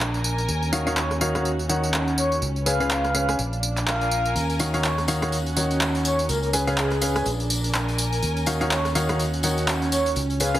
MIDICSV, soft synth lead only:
0, 0, Header, 1, 2, 480
1, 0, Start_track
1, 0, Key_signature, -6, "minor"
1, 0, Tempo, 483871
1, 480, Time_signature, 4, 2, 24, 8
1, 10511, End_track
2, 0, Start_track
2, 0, Title_t, "Soft synth lead"
2, 0, Program_c, 0, 80
2, 960, Note_on_c, 0, 73, 85
2, 1137, Note_off_c, 0, 73, 0
2, 2158, Note_on_c, 0, 73, 87
2, 2337, Note_off_c, 0, 73, 0
2, 2641, Note_on_c, 0, 77, 90
2, 3320, Note_off_c, 0, 77, 0
2, 3841, Note_on_c, 0, 77, 90
2, 4320, Note_off_c, 0, 77, 0
2, 4799, Note_on_c, 0, 73, 86
2, 4977, Note_off_c, 0, 73, 0
2, 5999, Note_on_c, 0, 73, 86
2, 6177, Note_off_c, 0, 73, 0
2, 6239, Note_on_c, 0, 70, 84
2, 6329, Note_off_c, 0, 70, 0
2, 6378, Note_on_c, 0, 70, 73
2, 6443, Note_off_c, 0, 70, 0
2, 6719, Note_on_c, 0, 68, 89
2, 7255, Note_off_c, 0, 68, 0
2, 8638, Note_on_c, 0, 73, 88
2, 8817, Note_off_c, 0, 73, 0
2, 9839, Note_on_c, 0, 73, 84
2, 10017, Note_off_c, 0, 73, 0
2, 10318, Note_on_c, 0, 77, 95
2, 10511, Note_off_c, 0, 77, 0
2, 10511, End_track
0, 0, End_of_file